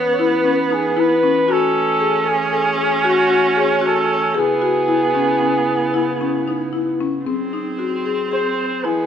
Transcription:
0.00 4.32 E3 medium
0.00 1.48 B3 loud
0.00 1.32 C#4 medium
0.00 1.32 B4 medium
0.13 0.23 C#5 medium
0.19 0.41 E4 medium
0.19 0.75 B4 medium
0.45 0.66 C#4 medium
0.70 0.92 D#4 medium
0.70 1.01 G#4 medium
0.97 1.18 E4 medium
0.97 1.53 B4 loud
1.23 1.45 C#4 medium
1.48 4.33 A3 medium
1.48 4.37 C#4 loud
1.48 1.92 F#4 medium
1.48 4.33 F#4 medium
1.48 2.32 A4 loud
2.00 2.22 G#4 medium
2.25 2.48 A4 medium
2.30 3.07 G#4 loud
2.52 2.74 A4 medium
2.78 3.00 G#4 medium
3.04 3.26 F#4 medium
3.09 3.61 F#4 medium
3.30 3.52 F#4 medium
3.56 3.79 G#4 medium
3.56 3.85 C#5 loud
3.82 4.26 F#4 medium
3.86 4.41 A4 medium
4.34 7.24 C#3 medium
4.34 6.99 B3 medium
4.34 7.23 B3 medium
4.34 7.24 E4 medium
4.34 4.57 G#4 medium
4.39 6.75 G#4 loud
4.62 4.84 F#4 medium
4.88 5.10 E4 medium
5.15 5.37 C#4 medium
5.41 5.85 C#4 medium
5.94 6.16 E4 medium
6.21 6.43 C#4 medium
6.48 6.69 D#4 medium
6.73 6.95 E4 medium
7.01 7.22 C#4 medium
7.25 8.82 F#3 medium
7.25 8.85 C4 medium
7.25 8.82 C4 medium
7.25 7.49 C4 medium
7.25 9.06 G#4 medium
7.53 7.75 D#4 medium
7.79 8.01 F#4 medium
8.05 8.27 G#4 medium
8.31 8.75 G#4 medium
8.31 8.86 C5 medium
8.84 9.06 E3 medium
8.84 9.06 B3 medium
8.84 9.06 E4 medium
8.84 9.06 G#4 medium
8.84 9.06 D#5 soft

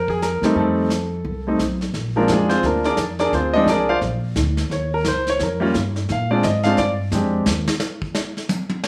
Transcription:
0.00 0.38 F2 medium
0.08 0.23 G#4 medium
0.08 kick soft
0.22 0.58 A#4 medium
0.22 snare medium
0.22 hi-hat pedal soft
0.42 0.54 D#2 medium
0.42 0.88 G3 medium
0.42 0.89 A3 medium
0.42 0.89 C4 medium
0.42 0.89 D#4 medium
0.42 snare soft
0.55 1.21 F2 medium
0.55 1.56 A4 medium
0.55 brush sweep soft
0.90 snare medium
0.90 hi-hat pedal soft
1.25 1.57 C2 medium
1.25 brush sweep soft
1.47 1.59 G3 medium
1.47 1.59 A3 medium
1.47 1.59 C4 medium
1.47 1.59 D#4 medium
1.59 1.92 B1 medium
1.59 snare medium
1.59 hi-hat pedal soft
1.81 snare soft
1.94 2.27 A#1 medium
1.94 brush sweep soft
1.94 snare soft
2.16 2.28 F3 medium
2.16 2.28 G#3 medium
2.16 2.29 A#3 medium
2.16 2.28 C4 medium
2.16 2.29 D4 medium
2.16 2.30 F4 medium
2.16 2.29 A#4 medium
2.28 2.62 F2 medium
2.28 2.48 G#4 medium
2.28 snare medium
2.28 hi-hat pedal soft
2.32 2.51 G#3 medium
2.32 2.51 D4 medium
2.32 2.49 F4 medium
2.49 2.62 C4 medium
2.49 2.63 F4 medium
2.49 2.63 G#4 medium
2.49 2.63 C5 medium
2.49 snare soft
2.63 2.97 D2 medium
2.63 2.85 A#3 soft
2.63 2.85 D4 medium
2.63 2.85 F4 medium
2.63 2.84 A#4 medium
2.63 brush sweep soft
2.63 snare soft
2.84 2.99 D4 medium
2.84 2.98 G#4 medium
2.84 2.98 A#4 medium
2.84 2.98 D5 medium
2.84 snare soft
2.97 3.31 F2 medium
2.97 snare medium
2.97 hi-hat pedal medium
3.19 3.33 D4 medium
3.19 3.32 G#4 medium
3.19 3.33 A#4 medium
3.19 3.32 D5 medium
3.19 snare soft
3.32 3.65 D2 medium
3.32 3.54 C4 soft
3.32 3.55 F4 medium
3.32 3.54 G#4 soft
3.32 3.54 C5 medium
3.32 brush sweep soft
3.32 snare soft
3.53 3.67 F3 medium
3.53 3.67 G#3 medium
3.53 3.67 C4 medium
3.53 3.67 D4 medium
3.53 3.67 D#4 medium
3.53 3.67 D#5 medium
3.66 4.00 C2 medium
3.66 3.88 D5 medium
3.66 snare medium
3.66 hi-hat pedal medium
3.70 3.90 D4 medium
3.70 3.90 G#4 medium
3.70 3.90 A#4 medium
3.89 3.97 F4 medium
3.89 3.97 C5 medium
3.89 3.97 D5 medium
3.89 3.97 F5 medium
4.01 4.35 A#1 medium
4.01 brush sweep soft
4.01 snare soft
4.36 4.69 D2 medium
4.36 snare medium
4.36 hi-hat pedal medium
4.57 snare soft
4.70 5.04 D#2 medium
4.70 4.93 C#5 medium
4.70 brush sweep medium
4.70 snare soft
4.94 5.06 A#4 medium
5.05 5.39 C#2 medium
5.05 5.28 C5 medium
5.05 snare medium
5.05 hi-hat pedal soft
5.27 5.41 C#5 medium
5.27 snare soft
5.39 5.74 F2 medium
5.39 5.62 A#4 medium
5.39 brush sweep soft
5.39 snare soft
5.60 5.72 G3 medium
5.60 5.73 A#3 medium
5.60 5.73 C#4 medium
5.60 5.73 F4 medium
5.74 6.08 G2 medium
5.74 snare medium
5.74 hi-hat pedal soft
5.96 snare soft
6.09 6.43 A#2 medium
6.09 6.31 F5 medium
6.09 brush sweep medium
6.09 snare soft
6.31 6.42 G#3 medium
6.31 6.42 C4 medium
6.31 6.43 D4 medium
6.31 6.43 F4 medium
6.31 6.43 D5 medium
6.43 6.77 G#2 medium
6.43 6.65 D#5 medium
6.43 snare medium
6.43 hi-hat pedal medium
6.63 6.77 G#3 medium
6.63 6.77 C4 medium
6.63 6.77 D4 medium
6.63 6.77 F5 loud
6.63 snare soft
6.68 6.78 F4 medium
6.77 7.11 G2 medium
6.77 6.91 D5 medium
6.77 brush sweep soft
6.77 snare soft
7.12 7.45 F2 medium
7.12 7.47 G#3 medium
7.12 7.47 C4 soft
7.12 7.48 D4 soft
7.12 7.48 G4 medium
7.12 snare medium
7.12 hi-hat pedal medium
7.46 7.67 D#2 medium
7.46 snare medium
7.68 snare medium
7.80 snare medium
7.80 hi-hat pedal medium
8.02 kick medium
8.15 snare loud
8.37 snare soft
8.49 hi-hat pedal medium
8.49 high tom loud
8.69 high tom medium
8.84 snare loud

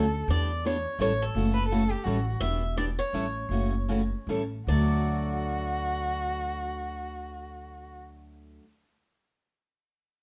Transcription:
0.00 0.23 D2 medium
0.00 0.26 A4 medium
0.28 0.85 E2 medium
0.28 0.50 E3 medium
0.28 0.50 B3 medium
0.28 0.50 D4 medium
0.28 0.51 G4 medium
0.28 0.66 D5 medium
0.65 0.76 E3 medium
0.65 0.76 B3 medium
0.65 0.76 D4 medium
0.65 0.76 G4 medium
0.65 0.98 C#5 medium
0.99 1.27 A1 medium
0.99 1.10 E3 medium
0.99 1.11 G3 medium
0.99 1.11 C#4 medium
0.99 1.11 E4 medium
0.99 1.11 A4 medium
0.99 1.23 C#5 medium
1.22 2.24 A4 medium
1.35 1.91 F#1 medium
1.35 1.56 C#3 medium
1.35 1.57 E3 medium
1.35 1.57 A3 medium
1.35 1.57 C#4 medium
1.35 1.57 F#4 medium
1.54 1.68 B4 medium
1.69 1.82 C#3 medium
1.69 1.82 E3 medium
1.69 1.82 A3 medium
1.69 1.83 C#4 medium
1.69 1.82 F#4 medium
1.69 1.93 A4 medium
1.91 2.05 G4 medium
2.04 2.34 A1 medium
2.04 2.17 E3 medium
2.04 2.17 G3 medium
2.04 2.17 C#4 medium
2.04 2.17 E4 medium
2.04 2.34 F#4 medium
2.04 2.17 A4 medium
2.40 2.98 E1 medium
2.40 2.62 E3 medium
2.40 2.63 B3 medium
2.40 2.63 D4 medium
2.40 2.63 G4 medium
2.40 2.77 E5 loud
2.77 2.88 E3 medium
2.77 2.88 B3 medium
2.77 2.89 D4 medium
2.77 2.89 G4 medium
2.77 2.83 D5 medium
2.99 4.27 C#5 medium
3.13 3.43 A1 medium
3.13 3.25 E3 medium
3.13 3.25 G3 medium
3.13 3.25 C#4 medium
3.13 3.25 E4 medium
3.13 3.25 A4 medium
3.49 4.11 F#1 medium
3.49 3.73 C#3 medium
3.49 3.73 E3 medium
3.49 3.73 A3 medium
3.49 3.73 C#4 medium
3.49 3.74 F#4 medium
3.88 4.01 C#3 medium
3.88 4.01 E3 medium
3.88 4.01 A3 medium
3.88 4.01 C#4 medium
3.88 4.01 F#4 medium
4.27 4.60 A1 medium
4.27 4.41 E3 medium
4.27 4.41 G3 medium
4.27 4.41 C#4 medium
4.27 4.41 E4 medium
4.27 4.41 A4 medium
4.67 8.57 D2 medium
4.67 8.63 D3 medium
4.67 8.64 F#3 medium
4.67 8.64 A3 medium
4.67 7.96 F#4 medium
4.67 8.59 D5 medium
4.72 8.66 F#4 medium

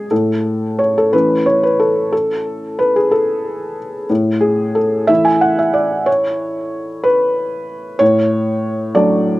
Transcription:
0.00 0.13 G#4 medium
0.11 1.10 A2 soft
0.11 0.79 A4 medium
0.79 0.96 C#5 medium
0.98 1.13 A4 medium
1.13 4.06 E3 soft
1.13 4.06 A3 soft
1.13 4.06 C#4 soft
1.13 1.46 B4 medium
1.46 1.62 C#5 medium
1.63 1.79 B4 medium
1.80 2.11 A4 medium
2.12 2.79 A4 medium
2.79 2.95 B4 medium
2.96 3.12 G#4 medium
3.11 3.76 A4 medium
4.10 5.06 A2 soft
4.41 4.75 G#4 medium
4.75 5.09 A4 medium
5.07 7.97 E3 soft
5.07 7.97 A3 soft
5.07 7.97 E4 soft
5.07 5.25 E5 medium
5.25 5.42 G#5 medium
5.41 5.58 F#5 medium
5.59 5.75 E5 medium
5.74 6.06 D5 medium
6.06 7.04 C#5 medium
7.04 8.00 B4 medium
7.99 8.93 A2 medium
7.99 8.95 C#5 medium
8.95 9.40 F#3 soft
8.95 9.40 A3 soft
8.95 9.40 D4 soft
8.95 9.40 D5 medium

